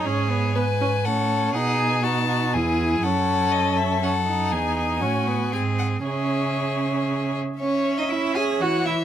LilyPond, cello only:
\new Staff \with { instrumentName = "Cello" } { \clef bass \time 3/4 \key cis \minor \tempo 4 = 120 gis,2 a,4 | b,2 e,4 | fis,2. | e,4 a,4 gis,4 |
cis2~ cis8 r8 | cis'8. dis'16 e'8 gis'8 fis'8 e'8 | }